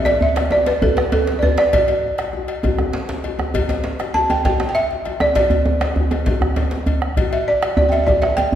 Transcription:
0.05 balafon D5, cowbell, djembe slap, djembe tone
0.21 balafon E5, djembe bass
0.36 bombo rim, cowbell, djembe slap
0.51 balafon D5, djembe tone
0.66 balafon B4, bombo rim, cowbell, djembe slap
0.82 balafon A4, bombo rim, bombo low, cowbell, djembe bass
0.97 balafon B4, bombo rim, djembe slap, djembe tone
1.12 balafon A4, bombo rim, cowbell, djembe slap, djembe tone
1.27 djembe slap
1.39 balafon B4 D5, cowbell
1.43 bombo rim, djembe tone, djembe bass
1.58 balafon D5, bombo rim, djembe slap
1.73 balafon D5, bombo low, cowbell, djembe bass
1.88 cowbell, djembe tone
2.18 bombo rim, cowbell, djembe slap
2.33 djembe tone
2.48 bombo rim, cowbell
2.63 bombo rim, bombo low, cowbell, djembe tone, djembe bass
2.79 bombo rim, djembe tone
2.93 bombo rim, djembe slap
3.09 djembe slap
3.24 bombo rim, cowbell, djembe tone
3.39 bombo rim, djembe tone
3.54 bombo low, cowbell, djembe tone, djembe bass
3.69 cowbell, djembe slap, djembe tone
3.84 djembe slap
3.99 bombo rim, cowbell, djembe slap
4.14 balafon A5, djembe tone
4.30 balafon G5, bombo rim, cowbell, djembe tone
4.45 balafon G5, bombo rim, bombo low, cowbell, djembe slap, djembe bass
4.60 bombo rim, djembe slap, djembe tone
4.69 balafon G5
4.75 balafon E5, bombo rim, cowbell, djembe slap
4.91 djembe slap
5.05 bombo rim, cowbell, djembe tone
5.20 balafon D5, bombo rim, djembe tone
5.35 balafon D5, bombo low, cowbell, djembe slap, djembe bass
5.50 cowbell, djembe tone, djembe bass
5.65 djembe tone
5.81 bombo rim, cowbell, djembe slap
5.96 djembe tone, djembe bass
6.11 bombo rim, cowbell, djembe tone
6.26 bombo low, cowbell, djembe slap, djembe bass
6.41 bombo rim, djembe slap, djembe tone, djembe bass
6.56 bombo rim, cowbell, djembe slap, djembe tone
6.71 bombo rim, djembe slap
6.86 cowbell, djembe slap, djembe bass
7.02 bombo rim
7.17 bombo low, cowbell, djembe bass
7.32 balafon E5, cowbell, djembe tone
7.48 balafon D5
7.62 bombo rim, cowbell, djembe slap
7.77 balafon D5, djembe tone, djembe bass
7.89 balafon E5 G5, cowbell, djembe tone
7.93 bombo rim
8.04 balafon D5 E5, djembe tone, djembe bass
8.08 bombo rim, bombo low, cowbell
8.22 balafon E5, bombo rim, djembe slap, djembe tone
8.37 balafon G5, cowbell, djembe slap, djembe tone

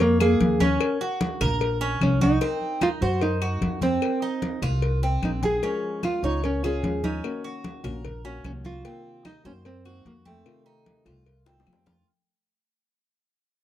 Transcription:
Already playing: upright bass F2, cuban tres C#5
0.00 nylon-string guitar A#3, cowbell, high conga
0.20 nylon-string guitar A#3, cuban tres G#4, high conga, claves
0.40 upright bass D#2, cowbell, high conga
0.60 cuban tres C#4, nylon-string guitar C#4, cowbell, high conga
0.81 cowbell, high conga, claves
1.01 cuban tres F#4, high conga
1.21 cowbell, high conga
1.41 upright bass A#1, cuban tres A#4, cowbell, high conga, low conga, claves
1.61 cowbell, high conga
1.81 cuban tres C#4, high conga
2.01 upright bass C2, nylon-string guitar C#4, cowbell, high conga, claves
2.21 nylon-string guitar D#4, cuban tres F#4, cowbell, high conga
2.41 cuban tres C4, cowbell
2.61 high conga
2.81 cuban tres D#4, nylon-string guitar F4, cowbell, high conga, claves
3.01 upright bass F#2, nylon-string guitar F#4, cuban tres C5, high conga
3.21 nylon-string guitar D#4, cowbell, high conga
3.41 cuban tres F#4, high conga, claves
3.61 upright bass F2, cowbell, high conga
3.81 cuban tres C4, nylon-string guitar C4, cowbell, high conga
4.02 cowbell, high conga, claves
4.22 cuban tres D#4, high conga
4.42 cowbell, high conga
4.62 upright bass C2, cuban tres F4, cowbell, high conga, low conga, claves
4.82 cowbell, high conga
5.02 cuban tres C4, high conga
5.22 upright bass A#1, nylon-string guitar D#4, cowbell, high conga, claves
5.43 cuban tres G#4, nylon-string guitar G#4, cowbell, high conga
5.62 nylon-string guitar F3 G#3 C#4 F4, cuban tres C#4, cowbell, high conga
5.83 high conga
6.03 cuban tres F4, nylon-string guitar F4, cowbell, high conga, claves
6.22 upright bass C#2, nylon-string guitar G#3 C#4 D#4 F4, cuban tres C#5, high conga
6.43 nylon-string guitar C#4, muted nylon-string guitar stroke, cowbell, high conga
6.63 nylon-string guitar G#3 C#4 F4, cuban tres G#4, high conga, claves
6.83 upright bass D#2, nylon-string guitar F3 G#3 C#4 F4, cowbell, high conga
7.04 cuban tres C#4, nylon-string guitar D#4, cowbell, high conga
7.23 nylon-string guitar D#3 A#3 C#4 F#4, cowbell, high conga, claves
7.44 cuban tres F#4, high conga
7.64 cowbell, high conga
7.84 upright bass A#1, nylon-string guitar A#3 C#4 F#4, cuban tres A#4, cowbell, high conga, low conga, claves
8.04 muted nylon-string guitar stroke, cowbell, high conga, low conga
8.25 nylon-string guitar A#3 C#4 F#4, cuban tres C#4, high conga
8.44 upright bass C2, nylon-string guitar D#3 A#3 C#4 F#4, cowbell, high conga, claves
8.64 nylon-string guitar F4, cuban tres F#4, cowbell, high conga
8.85 nylon-string guitar C3 D#3 A#3 C4, cuban tres C4, cowbell
9.05 high conga
9.25 cuban tres D#4, nylon-string guitar D#4, cowbell, high conga, claves
9.45 upright bass F#2, nylon-string guitar D#3 A#3 C4 C#4 F#4, cuban tres C5
9.65 nylon-string guitar C4, muted nylon-string guitar stroke, cowbell, high conga
9.85 nylon-string guitar D#3 A#3 C4 F#4, cuban tres F#4, high conga, claves
10.05 upright bass F2, nylon-string guitar D#3 A#3 C4 F#4, cowbell, high conga
10.25 nylon-string guitar A3, cuban tres C4, cowbell, high conga
10.45 nylon-string guitar C3 D#3 A3 C4 F4, cowbell, high conga, claves
10.66 cuban tres D#4, high conga
10.86 cowbell, high conga
11.05 upright bass C2, nylon-string guitar D#3 A3 C4 F4, cuban tres F4, cowbell, high conga, low conga, claves
11.26 muted nylon-string guitar stroke, cowbell, high conga
11.46 nylon-string guitar D#3 A3 C4 F4, cuban tres C4, high bongo, high conga
11.60 high bongo
11.66 upright bass F2, nylon-string guitar D#3 A3 C4 F4, cowbell, high conga, claves
11.73 low bongo
11.86 cuban tres F4, cowbell, low bongo, high conga

